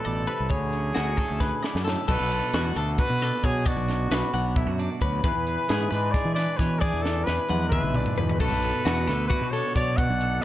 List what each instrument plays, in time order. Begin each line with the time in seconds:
Already playing: clean electric guitar G3 D#4 G4, trumpet A4
0.05 fingered electric bass A1, clean electric guitar B2 D5, closed hi-hat
0.27 clean electric guitar C3 B4, closed hi-hat
0.40 fingered electric bass C2
0.50 fingered electric bass D2, clean electric guitar D3 C#5, trumpet G#4, kick, closed hi-hat
0.73 clean electric guitar C#4, closed hi-hat
0.95 fingered electric bass D2, clean electric guitar E4 F#4, snare, closed hi-hat
1.17 clean electric guitar A3 A4, kick, closed hi-hat
1.30 fingered electric bass D2
1.40 clean electric guitar B4, kick, snare
1.63 clean electric guitar E4 D5, snare
1.75 fingered electric bass F#2, snare
1.85 clean electric guitar A2 A4, snare
2.08 fingered electric bass B1, clean electric guitar B2 B3 D4 F#4 A4, trumpet B4, kick, crash
2.20 fingered electric bass B1
2.31 clean electric guitar A4, closed hi-hat
2.53 fingered electric bass E2, clean electric guitar F#4, snare, closed hi-hat
2.76 fingered electric bass D2, clean electric guitar B3 D4 A4, closed hi-hat
2.98 clean electric guitar F#4, trumpet B4, kick, closed hi-hat
3.10 fingered electric bass B2
3.21 clean electric guitar D4 A4, snare, closed hi-hat
3.44 fingered electric bass B2, clean electric guitar F#3 C#5, trumpet G#4, kick, closed hi-hat
3.66 clean electric guitar B2 D4 D5, trumpet F#4, kick, closed hi-hat
3.77 fingered electric bass B1
3.88 clean electric guitar D4, snare, closed hi-hat
4.11 fingered electric bass B1, clean electric guitar D4 B4, snare, closed hi-hat
4.33 fingered electric bass B1, clean electric guitar B3 D4 F#5, closed hi-hat
4.56 clean electric guitar E4 E5, kick, closed hi-hat
4.66 fingered electric bass F#2, clean electric guitar F#4
4.79 clean electric guitar D4 D5, closed hi-hat
5.01 fingered electric bass D2, clean electric guitar F#3 B4, kick, closed hi-hat
5.24 fingered electric bass E2, clean electric guitar E3 G#4 B4, trumpet B4, kick, closed hi-hat
5.35 fingered electric bass E2
5.47 clean electric guitar G#4, closed hi-hat
5.69 fingered electric bass G#2, clean electric guitar G#4, snare, closed hi-hat
5.91 fingered electric bass G#2, clean electric guitar G#3 D4 B4, closed hi-hat
6.12 clean electric guitar G#4, trumpet D5, kick, snare, closed hi-hat
6.25 fingered electric bass E3
6.35 clean electric guitar B4, trumpet D5, snare, closed hi-hat
6.39 clean electric guitar D4
6.57 clean electric guitar B2 C#5, fingered electric bass E3, trumpet B4, kick, snare, closed hi-hat
6.81 clean electric guitar E3 D4 D5, trumpet G#4, kick, closed hi-hat
6.94 fingered electric bass E2
7.02 trumpet A4, snare
7.07 clean electric guitar G#4
7.24 fingered electric bass E2, trumpet B4, clean electric guitar B4, snare
7.29 clean electric guitar G#4
7.49 fingered electric bass E2, clean electric guitar G#3 D4 F#5, high tom
7.69 trumpet B4, clean electric guitar E5, kick, mid tom
7.74 clean electric guitar G#4
7.83 fingered electric bass B1, mid tom
7.94 clean electric guitar D4 D5, mid tom
8.06 floor tom
8.18 fingered electric bass E2, clean electric guitar B2 B4, floor tom
8.29 floor tom
8.36 trumpet B4, kick, closed hi-hat, crash
8.41 fingered electric bass B1, clean electric guitar B2 F#4 A4
8.51 fingered electric bass B1
8.63 clean electric guitar A4, closed hi-hat
8.85 fingered electric bass E2, clean electric guitar F#4, snare, closed hi-hat
9.07 fingered electric bass D2, clean electric guitar B3 D4 A4, snare, closed hi-hat
9.28 clean electric guitar E4 F#4, trumpet B4, kick, closed hi-hat
9.41 fingered electric bass B2, clean electric guitar F#4
9.51 clean electric guitar A4, trumpet C#5, closed hi-hat
9.56 clean electric guitar D4
9.76 fingered electric bass B2, clean electric guitar F#3 C#5, trumpet D5, kick, closed hi-hat
9.97 clean electric guitar B2 F#4 D5, trumpet F#5, kick, closed hi-hat
10.09 fingered electric bass B1
10.21 clean electric guitar A4, closed hi-hat